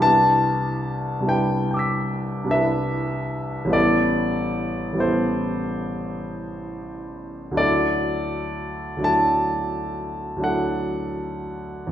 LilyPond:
\new Staff \with { instrumentName = "Grand piano" } { \time 9/8 \key d \mixolydian \tempo 4. = 46 << { r2 <g'' d''' e''' b'''>2~ <g'' d''' e''' b'''>8 | r1 r8 | r1 r8 | } \\ { <c, g d' e' b' a''>4. <c, g d' e' b' g''>4. <c, g d' e' b' e''>4. | <a,, g b e' a' d''>4. <a,, g b e' a' c''>2. | <d, fis d' e' a' d''>4. <d, fis d' e' a' a''>4. <d, fis d' e' a' fis''>4. | } >> }